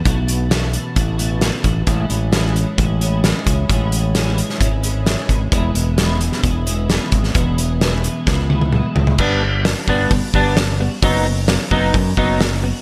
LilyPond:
<<
  \new Staff \with { instrumentName = "Overdriven electric guitar" } { \time 4/4 \key a \major \tempo 4 = 131 r1 | r1 | r1 | r1 |
r1 | <g b d'>8 <g b>8 <g b>8 <g b d'>8 <g b>8 <g b d'>8 <g b>8 <g b>8 | <fis b dis'>8 <fis b>8 <fis b>8 <fis b dis'>8 <fis b>8 <fis b dis'>8 <fis b>8 <fis b>8 | }
  \new Staff \with { instrumentName = "Clean electric guitar" } { \time 4/4 \key a \major <b, e a b fis'>8 <a b fis'>8 <b, e a b fis'>8 <a b fis'>8 <e a b fis'>8 <b, e a b fis'>8 <e a b fis'>8 <a b fis'>8 | <a, e gis cis' e'>8 <gis cis' e'>8 <a, e gis cis' e'>8 <gis cis' e'>8 <e gis cis' e'>8 <a, e gis cis' e'>8 <e gis cis' e'>8 <gis cis' e'>8 | <a, e gis cis' e'>8 <gis cis' e'>8 <a, e gis cis' e'>8 <gis cis' e'>8 <e gis cis' e'>8 <a, e gis cis' e'>8 <e gis cis' e'>8 <gis cis' e'>8 | <e, b, e gis b e'>8 <e gis b e'>8 <e, b, e gis b e'>8 <e gis b e'>8 <e gis b e'>8 <e, b, e gis b e'>8 <e gis b e'>8 <e gis b e'>8 |
<e, b, e gis b e'>8 <e gis b e'>8 <e, b, e gis b e'>8 <e gis b e'>8 <e gis b e'>8 <e, b, e gis b e'>8 <e gis b e'>8 <e gis b e'>8 | g4 d'8 fis'8 b8 g8 d'8 fis'8 | fis4 dis'8 fis'8 b8 fis8 dis'8 fis'8 | }
  \new Staff \with { instrumentName = "Fingered electric bass" } { \clef bass \time 4/4 \key a \major b,,2 a,,4. a,,8 | a,,8 a,,4. a,,4. cis,8 | a,,2 gis,,4. gis,,8 | e,,8 e,,4. e,,4. gis,,8 |
e,,2 cis,4. cis,8 | g,,4. g,,8 g,,16 r16 g,,4. | fis,,4. fis,,8 fis,8 fis,,4. | }
  \new DrumStaff \with { instrumentName = "Drums" } \drummode { \time 4/4 <hh bd>8 hh8 <hh sn>8 hh8 <hh bd>8 hh8 <hh sn>8 <hh bd>8 | <hh bd>8 hh8 <hh sn>8 hh8 <hh bd>8 hh8 <hh sn>8 <hh bd>8 | <hh bd>8 hh8 <hh sn>8 hh16 sn16 <hh bd>8 hh8 <hh sn>8 <hh bd>8 | <hh bd>8 hh8 <hh sn>8 hh16 sn16 <hh bd>8 hh8 <hh sn>8 <hh bd>16 sn16 |
<hh bd>8 hh8 <hh sn>8 hh8 <bd sn>8 tommh16 tommh16 toml8 tomfh16 tomfh16 | <cymc bd>4 <hho sn>8 bd8 <hho bd>8 bd8 <hho sn>4 | <hho bd>4 <hho sn>8 bd8 <hho bd>8 bd8 <hho sn>4 | }
>>